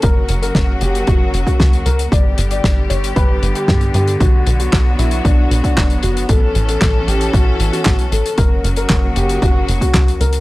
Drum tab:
HH |x-xxx-xxx-xxxxxx|x-xxx-xxx-xxxxxx|x-xxx-xxx-xxxxxx|x-xxx-xxx-xxxxxx|
CP |----------------|----------------|----x-------x---|----x-------x---|
SD |----o-------o---|----o-------o---|----o-------o---|----o-------o---|
BD |o---o---o--oo---|o---o---o---o---|o---o---o--oo---|o---o---o---o---|

HH |x-xxx-xxx-xxxxxx|
CP |----x-------x---|
SD |----o-------o---|
BD |o---o---o--oo---|